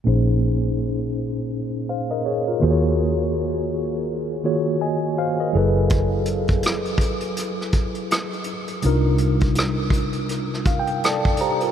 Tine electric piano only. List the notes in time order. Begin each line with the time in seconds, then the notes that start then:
0.04 A#2 A#3 C#4 D#4 G#4
0.08 C5
1.89 C5 F5
2.11 A#4 D#5
2.26 G#4 C#5
2.47 F4 A#4
2.60 D#3 A#3 F4 F#4 G#4
2.64 C5
2.71 C#5
4.44 D#3 A#3 F4 F#4 G#4 C#5
4.81 D#5 G#5
5.18 C5 F5
5.40 A#4 D#5
5.53 F#3 E4 G#4 A4
5.57 B4
8.82 C3 G3 D4 D#4 F4
8.86 A#4
10.67 F5
10.79 G5
11.04 A4 D5 A5
11.41 G4 C5 A#5
11.62 F4 A#4